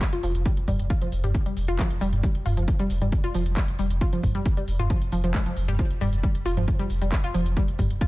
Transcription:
0.01 kick, clap, closed hi-hat, shaker
0.13 F1 F4, closed hi-hat, shaker
0.23 F1 F3, open hi-hat, shaker
0.35 F1, closed hi-hat, shaker
0.46 G3, kick, closed hi-hat, shaker
0.57 F1, closed hi-hat, shaker
0.68 F1 G3, kick, mid tom, open hi-hat, shaker
0.79 F1, closed hi-hat, shaker
0.90 F4, kick, closed hi-hat, shaker
1.02 F1 F3, closed hi-hat, shaker
1.12 F1, open hi-hat, shaker
1.24 F1 G3, closed hi-hat, mid tom, shaker
1.35 kick, closed hi-hat, shaker
1.46 F1 G3, closed hi-hat, shaker
1.57 F1, open hi-hat, shaker
1.68 F1 F4, closed hi-hat, shaker
1.79 F3, kick, clap, closed hi-hat, shaker
1.91 F1, closed hi-hat, shaker
2.01 F1 G3, open hi-hat, shaker
2.13 F1, closed hi-hat, mid tom, shaker
2.23 G3, kick, closed hi-hat, shaker
2.35 F1, closed hi-hat, shaker
2.46 F1 F4, mid tom, open hi-hat, shaker
2.57 F1 F3, closed hi-hat, shaker
2.68 kick, closed hi-hat, shaker
2.79 F1 G3, closed hi-hat, shaker
2.90 F1, open hi-hat, shaker
3.02 F1 G3, closed hi-hat, mid tom, shaker
3.12 kick, closed hi-hat, shaker
3.24 F1 F4, closed hi-hat, shaker
3.34 F1 F3, open hi-hat, shaker
3.46 F1, closed hi-hat, shaker
3.57 G3, kick, clap, closed hi-hat, shaker
3.68 F1, closed hi-hat, shaker
3.79 F1 G3, open hi-hat, shaker
3.91 F1, closed hi-hat, shaker
4.01 F4, kick, closed hi-hat, shaker
4.13 F1 F3, closed hi-hat, shaker
4.23 F1, kick, mid tom, open hi-hat, shaker
4.35 F1 G3, closed hi-hat, shaker
4.46 kick, closed hi-hat, shaker
4.57 F1 G3, closed hi-hat, shaker
4.68 F1, open hi-hat, shaker
4.79 F1 F4, closed hi-hat, mid tom, shaker
4.90 F3, kick, closed hi-hat, shaker
5.02 F1, closed hi-hat, shaker
5.12 F1 F3, open hi-hat, shaker
5.24 F1 F3, closed hi-hat, shaker
5.34 G#3, kick, clap, closed hi-hat, shaker
5.46 F1 F3, closed hi-hat, shaker
5.57 F1, open hi-hat, shaker
5.68 F1 G3, closed hi-hat, mid tom, shaker
5.79 F3, kick, closed hi-hat, shaker
5.91 F1, closed hi-hat, shaker
6.01 F1 G3, mid tom, open hi-hat, shaker
6.13 F1, closed hi-hat, shaker
6.23 G3, kick, closed hi-hat, shaker
6.35 F1, closed hi-hat, shaker
6.46 F1 F4, open hi-hat, shaker
6.57 F1 F3, closed hi-hat, mid tom, shaker
6.68 kick, closed hi-hat, shaker
6.79 F1 G3, closed hi-hat, shaker
6.90 F1, open hi-hat, shaker
7.02 F1 G3, closed hi-hat, shaker
7.12 kick, clap, closed hi-hat, shaker
7.24 F1 F4, closed hi-hat, shaker
7.34 F1 F3, open hi-hat, shaker
7.46 F1, closed hi-hat, shaker
7.57 G3, kick, closed hi-hat, shaker
7.68 F1, closed hi-hat, shaker
7.79 F1 G3, kick, mid tom, open hi-hat, shaker
7.90 F1, closed hi-hat, shaker
8.01 F4, kick, closed hi-hat, shaker

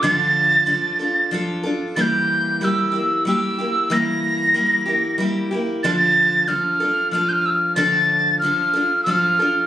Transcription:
0.02 D3 F3 D4 F4 A4 A6
0.66 F3 D4 F4 A4
0.99 D4 F4 A4
1.31 F3 D4 F4 A4
1.63 D4 F4 A4
1.96 E3 G3 A#3 E4 G4 A6
2.01 G6
2.61 G3 A#3 E4 G4 E6 G6
2.92 E4 G4
2.96 A#3
3.25 G3 A#3 E4 G4 E6
3.59 A#3 E4 G4
3.90 E3 G3 A#3 E4 G4 A#6
4.54 G3 A#3 E4 G4
4.86 A#3 E4 G4
5.18 G3 A#3 E4 G4
5.51 A#3 E4 G4
5.83 D3 F3 D4 F4 A4 A6
6.48 F3 D4 F4 A4 F6
6.80 D4 F4 A4
7.11 F3 D4 F4 A4 F6
7.29 G6
7.33 F6
7.46 E6
7.50 F6
7.76 D3 F3 D4 F4 A4 A6
8.39 F3 F6
8.43 D4 F4 A4
8.73 D4 F4 A4
9.04 F3 D4 F6
9.08 F4 A4
9.39 D4 F4 A4

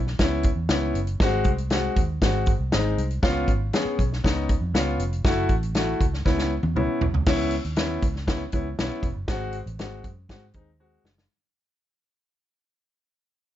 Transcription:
Already playing: B1
0.07 snare
0.19 C#2 B3 C#4 E4, kick, snare, closed hi-hat
0.43 kick, closed hi-hat
0.56 E2
0.69 C#2 B3 C#4 E4, snare, closed hi-hat
0.94 F#1, closed hi-hat
1.07 closed hi-hat
1.20 G#1 G#3 C4 F#4, kick, snare, closed hi-hat
1.44 C2, kick, closed hi-hat
1.58 closed hi-hat
1.70 G#3 C4 F#4, snare, closed hi-hat
1.96 D#2, kick, closed hi-hat
2.22 G#1 G#3 C4 F#4, kick, snare, closed hi-hat
2.46 kick, closed hi-hat
2.59 C2
2.72 G#1 G#3 C4 D#4, snare, closed hi-hat
2.98 C2, closed hi-hat
3.10 closed hi-hat
3.23 B3 C#4 F4, kick, snare, closed hi-hat
3.48 G#1, kick, closed hi-hat
3.73 B3 C#4 G#4, snare, closed hi-hat
3.85 muted fingered electric bass stroke
3.98 B1, kick, closed hi-hat
4.13 snare
4.24 C#2 B3 C#4 D#4, kick, snare, closed hi-hat
4.49 kick, closed hi-hat
4.61 F2
4.74 C#2 B3 C#4 F4, snare, closed hi-hat
4.98 F1, closed hi-hat
5.13 closed hi-hat
5.25 F#1 A3 E4 F#4, kick, snare, closed hi-hat
5.49 A1, kick, closed hi-hat
5.63 closed hi-hat
5.74 A3 E4 F#4, snare, closed hi-hat
6.00 C#2, kick, closed hi-hat
6.13 snare
6.25 C#2 B3 C#4 E4, kick, snare
6.38 snare
6.63 E2, high tom
6.75 C#2 B3 C#4 E4, mid tom
7.01 B1, floor tom
7.13 C#2, floor tom
7.26 C#2 B3 C#4 E4, kick, snare, crash
7.51 closed hi-hat
7.64 D#2, closed hi-hat
7.76 B3 C#4 E4, snare, closed hi-hat
8.02 C#2, kick, closed hi-hat
8.16 snare
8.27 B3 C#4 E4, kick, snare, closed hi-hat
8.52 C#2 B3 C#4 E4, kick, closed hi-hat
8.79 B1 B3 C#4 E4, snare, closed hi-hat
9.03 E1, kick, closed hi-hat
9.16 F#1
9.28 G#1 G#3 C4 F#4, kick, snare, closed hi-hat
9.53 closed hi-hat
9.66 A1, closed hi-hat
9.79 G#1 G#3 C4 F#4, snare, closed hi-hat
10.04 F#2, kick, closed hi-hat
10.29 G#2 G#3 C4 F#4, kick, snare, closed hi-hat
10.53 D#2 G#3 C4 D#4, kick, closed hi-hat
10.80 G#3 C4 F#4
11.04 F#1, snare
11.18 snare

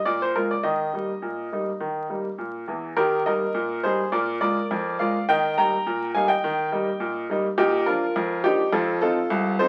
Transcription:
0.05 A#2 D5
0.22 C5
0.36 G#3 A#3 F4 A#4
0.51 D5
0.63 D#3 D#5
0.93 G3 A#3 D#4
1.22 A#2
1.52 G3 A#3 D#4
1.80 D#3
2.10 G3 A#3 D#4
2.38 A#2
2.68 E2 E3
2.97 D#3 G4 A#4
3.26 G3 A#3 D#4 A#4 D#5
3.54 A#2
3.84 G3 A#3 D#4 G#4 C5
4.12 A#2 A#4 D5
4.41 G#3 A#3 F4 A#4 D5
4.71 F2
4.99 G#3 A#3 F4 D5 F5
5.29 D#3 D#5 G5
5.58 G3 A#3 D#4 G5 A#5
5.86 A#2
6.15 G3 A#3 D#4 F5 G#5
6.28 D#5 G5
6.44 D#3
6.72 G3 A#3 D#4
7.00 A#2
7.30 G3 A#3 D#4
7.58 A#2 D#4 G4
7.86 F3 A#3 D4 F4 A#4
8.16 F2
8.44 F3 A#3 D4 D#4 G4
8.72 F2 F4 A4
9.02 F3 C4 D#4 F4 A4
9.30 C2
9.59 F3 C4 D#4 A4 C5

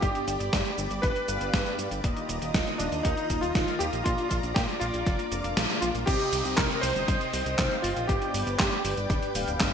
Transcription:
Already playing: G4
0.01 G1 G2 B3 D4 G4 D5 B5 D6, kick, closed hi-hat, cabasa
0.15 closed hi-hat, cabasa
0.28 G1, closed hi-hat, cabasa
0.40 G1, closed hi-hat, cabasa
0.53 G2, kick, snare, closed hi-hat, cabasa
0.66 closed hi-hat, cabasa
0.78 G1, cabasa
0.91 G1, closed hi-hat, cabasa
1.02 G1 B4, kick, snare, closed hi-hat, cabasa
1.16 closed hi-hat, cabasa
1.28 G1 G2 B3 D4 G4 F5, closed hi-hat, cabasa
1.41 G1, closed hi-hat, cabasa
1.54 G1, kick, snare, closed hi-hat, cabasa
1.66 closed hi-hat, cabasa
1.79 G2, closed hi-hat, cabasa
1.91 G1, closed hi-hat, cabasa
2.04 D#1 D#3 A#3 D#4 F4 D#5 A#5 D#6, kick, closed hi-hat, cabasa
2.17 closed hi-hat, cabasa
2.29 D#1, closed hi-hat, cabasa
2.42 D#1, closed hi-hat, cabasa
2.54 D#1, kick, snare, closed hi-hat, cabasa
2.67 closed hi-hat, cabasa
2.78 D#1 D4, snare, cabasa
2.92 D#2, closed hi-hat, cabasa
3.03 D#2 D#4, kick, closed hi-hat, cabasa
3.17 closed hi-hat, cabasa
3.30 D#1, kick, closed hi-hat, cabasa
3.41 D#1 F4, closed hi-hat, cabasa
3.55 D#1 D#3 A#3 D#4 F4 F5, kick, snare, closed hi-hat, cabasa
3.68 closed hi-hat, cabasa
3.79 D#2 G4, closed hi-hat, cabasa
3.93 A#1, closed hi-hat, cabasa
4.04 A#1 A#2 A#3 D4 F4 D5 D6, kick, closed hi-hat, cabasa
4.18 closed hi-hat, cabasa
4.29 A#1 F4, kick, closed hi-hat, cabasa
4.43 A#1, closed hi-hat, cabasa
4.54 A#2 G4, kick, snare, closed hi-hat, cabasa
4.69 closed hi-hat, cabasa
4.80 A#1 F4, closed hi-hat, cabasa
4.94 A#1, closed hi-hat, cabasa
5.06 F1, kick, snare, closed hi-hat, cabasa
5.19 closed hi-hat, cabasa
5.32 F1 A#2 A#3 D4 F4 F5, closed hi-hat, cabasa
5.44 F1, closed hi-hat, cabasa
5.57 A#1, snare, closed hi-hat, cabasa
5.70 closed hi-hat, cabasa
5.81 A#1 F4, closed hi-hat, cabasa
5.95 A#1, closed hi-hat, cabasa
6.06 C2 C3 C4 D#4 G4 C5 D#5 G5 D#6, kick, closed hi-hat, crash, downlifter, cabasa
6.20 closed hi-hat, cabasa
6.33 C2, open hi-hat, cabasa
6.45 C2, closed hi-hat, cabasa
6.56 C2 A#4, kick, snare, clap, closed hi-hat, cabasa
6.70 closed hi-hat, cabasa
6.81 C2 C5, snare, open hi-hat, cabasa
6.96 G1, closed hi-hat, cabasa
7.08 G1, kick, closed hi-hat, cabasa
7.21 closed hi-hat, cabasa
7.33 C2, open hi-hat, cabasa
7.46 C2, closed hi-hat, cabasa
7.59 C2 C3 C4 D#4 G4 F5, kick, snare, clap, closed hi-hat, cabasa
7.71 closed hi-hat, cabasa
7.82 G1 F4, open hi-hat, cabasa
7.96 A#1, closed hi-hat, cabasa
8.07 G1 G2 B3 D4 G4 B4 D5 D6, kick, closed hi-hat, cabasa
8.22 closed hi-hat, cabasa
8.34 G1, open hi-hat, cabasa
8.47 G1, closed hi-hat, cabasa
8.58 G2 G4, kick, snare, clap, closed hi-hat, cabasa
8.72 closed hi-hat, cabasa
8.85 G1, open hi-hat, cabasa
8.97 G1, closed hi-hat, cabasa
9.10 D1, kick, snare, closed hi-hat, cabasa
9.23 closed hi-hat, cabasa
9.35 D1 G2 B3 D4 G4 F5, open hi-hat, cabasa
9.48 D1, closed hi-hat, cabasa
9.60 G1, kick, snare, clap, closed hi-hat, cabasa

